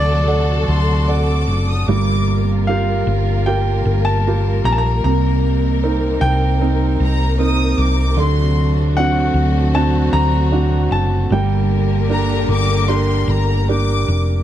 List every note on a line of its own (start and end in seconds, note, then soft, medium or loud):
0.00 0.65 D2 medium
0.00 5.00 C3 medium
0.00 1.86 F#3 medium
0.00 1.86 A3 medium
0.00 1.85 D4 medium
0.00 1.86 F#4 medium
0.00 0.26 A4 soft
0.00 1.86 A4 loud
0.00 0.27 D5 soft
0.00 1.05 D5 loud
0.00 0.27 F#5 medium
0.27 1.06 A4 soft
0.27 1.06 D5 soft
0.27 1.06 F#5 medium
0.68 1.45 D2 medium
0.68 1.06 C6 medium
1.08 1.86 A4 soft
1.08 1.86 D5 soft
1.08 1.86 F#5 medium
1.08 1.69 D6 medium
1.48 1.85 F#1 medium
1.69 1.89 D#6 medium
1.88 3.03 G1 medium
1.88 5.00 G3 medium
1.88 8.14 G3 medium
1.88 8.14 A#3 medium
1.88 5.02 F4 medium
1.88 8.14 A#4 medium
1.88 2.44 D6 medium
2.67 3.45 F4 medium
2.67 3.45 G4 soft
2.67 3.45 A#4 medium
2.67 3.49 F5 medium
3.07 3.82 G1 loud
3.46 4.24 F4 soft
3.46 4.24 G4 soft
3.46 4.24 A#4 medium
3.46 4.08 G5 medium
3.85 4.61 G1 medium
4.05 4.60 A5 loud
4.28 5.03 F4 soft
4.28 5.03 G4 soft
4.28 5.03 A#4 medium
4.64 5.01 A#1 medium
4.64 4.72 A#5 loud
4.72 4.79 A5 medium
4.78 5.03 A#5 loud
5.04 6.18 C2 medium
5.04 11.26 C3 medium
5.04 8.14 C3 medium
5.04 8.14 D#4 medium
5.04 5.79 A#5 medium
5.83 6.59 C4 medium
5.83 6.59 D#4 soft
5.83 6.59 A#4 medium
6.21 6.96 C2 medium
6.21 7.35 G5 loud
6.61 7.37 C4 medium
6.61 7.37 D#4 soft
6.61 7.38 A#4 medium
7.00 7.74 C2 loud
7.00 7.37 A#5 medium
7.39 8.15 C4 medium
7.39 8.15 D#4 soft
7.39 8.15 A#4 medium
7.39 7.76 D#6 loud
7.78 8.15 C2 medium
7.78 8.18 D6 loud
8.16 9.30 D2 loud
8.16 11.26 D3 medium
8.16 11.27 F#3 medium
8.16 11.28 A3 medium
8.16 11.28 D4 medium
8.16 11.28 F#4 medium
8.16 8.77 C6 medium
8.97 9.72 C4 medium
8.97 9.72 D4 medium
8.97 9.72 F#4 medium
8.97 9.77 F#5 medium
9.34 10.08 D2 medium
9.75 10.50 C4 medium
9.75 10.50 D4 soft
9.75 10.50 F#4 medium
9.75 10.14 A5 loud
10.13 10.87 D2 loud
10.13 10.87 A#5 loud
10.52 11.28 C4 soft
10.52 11.28 D4 medium
10.52 11.28 F#4 medium
10.91 11.27 F#1 medium
10.91 11.32 A5 medium
11.30 12.44 G1 loud
11.30 14.43 D3 medium
11.30 14.43 G3 medium
11.30 14.43 A#3 medium
11.30 14.43 G4 medium
11.30 14.43 A#4 medium
11.30 14.05 G5 medium
12.10 12.86 D4 medium
12.10 12.86 G4 soft
12.10 12.86 A#4 medium
12.10 12.46 A#5 loud
12.48 13.24 G1 medium
12.48 12.89 D6 loud
12.88 13.66 D4 soft
12.88 13.66 G4 medium
12.88 13.66 A#4 medium
12.88 13.29 C6 loud
13.28 14.04 G1 loud
13.28 13.69 A#5 medium
13.69 14.43 D4 medium
13.69 14.43 G4 soft
13.69 14.43 A#4 medium
13.69 14.43 D6 medium
14.08 14.43 F1 medium